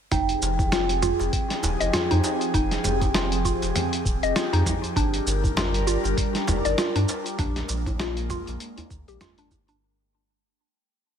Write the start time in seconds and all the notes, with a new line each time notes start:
0.11 F1 F3 C4 D#4 G4 G#4 G5, kick, closed hi-hat, mid tom, shaker
0.29 closed hi-hat, shaker
0.42 F1, djembe slap, shaker
0.59 kick, djembe bass, shaker
0.72 F4, snare, closed hi-hat, djembe slap, shaker
0.89 closed hi-hat, shaker
1.02 F4, mid tom, shaker
1.19 F1, djembe slap, shaker
1.33 kick, closed hi-hat, shaker
1.50 snare, closed hi-hat, shaker
1.63 D#1, djembe slap, djembe bass, shaker
1.80 F1 D#5, closed hi-hat, djembe tone, shaker
1.93 F4, snare, closed hi-hat, mid tom, shaker
2.11 F2 D#4, closed hi-hat, djembe tone, shaker
2.24 djembe slap, shaker
2.41 closed hi-hat, shaker
2.54 F1 D#4, kick, closed hi-hat, shaker
2.71 snare, closed hi-hat, shaker
2.84 F1, mid tom, djembe slap, shaker
3.01 kick, closed hi-hat, djembe tone, djembe bass, shaker
3.14 F4, snare, closed hi-hat, djembe slap, shaker
3.32 closed hi-hat, shaker
3.45 F4, kick, shaker
3.62 F1, closed hi-hat, djembe slap, shaker
3.76 closed hi-hat, mid tom, shaker
3.93 closed hi-hat, shaker
4.05 D#1, kick, shaker
4.22 F1 D#5, closed hi-hat, shaker
4.36 F4, snare, closed hi-hat, shaker
4.53 F2 D#4, closed hi-hat, shaker
4.66 kick, mid tom, djembe bass, shaker
4.83 closed hi-hat, djembe tone, shaker
4.96 G1 G3 D4 A#4, kick, closed hi-hat, shaker
5.14 closed hi-hat, shaker
5.26 G1, djembe slap, shaker
5.44 kick, djembe bass, shaker
5.57 F4, snare, closed hi-hat, mid tom, djembe slap, shaker
5.74 closed hi-hat, shaker
5.87 F4, shaker
6.04 G1, djembe slap, shaker
6.17 kick, closed hi-hat, shaker
6.35 snare, closed hi-hat, shaker
6.47 F1, mid tom, djembe slap, djembe bass, shaker
6.65 G1 D5, closed hi-hat, djembe tone, shaker
6.78 F4, snare, closed hi-hat, shaker
6.95 G2 D4, closed hi-hat, djembe tone, shaker
7.08 djembe slap, shaker
7.26 closed hi-hat, shaker
7.39 A#1 G#3 A#3 D4, kick, closed hi-hat, mid tom, shaker
7.56 snare, closed hi-hat, shaker
7.68 A#1, djembe slap, shaker
7.86 kick, closed hi-hat, djembe tone, djembe bass, shaker
7.99 F4, snare, closed hi-hat, djembe slap, shaker
8.17 closed hi-hat, shaker
8.30 F4, kick, mid tom, shaker
8.47 A#1, closed hi-hat, djembe slap, shaker
8.60 closed hi-hat, shaker
8.78 closed hi-hat, djembe bass, shaker
8.90 D2, kick, shaker
9.07 A#1 G4, closed hi-hat, shaker
9.21 F4, snare, closed hi-hat, mid tom, shaker
9.38 D4, closed hi-hat, shaker
9.51 kick, djembe bass, shaker
9.68 D4, closed hi-hat, djembe tone, shaker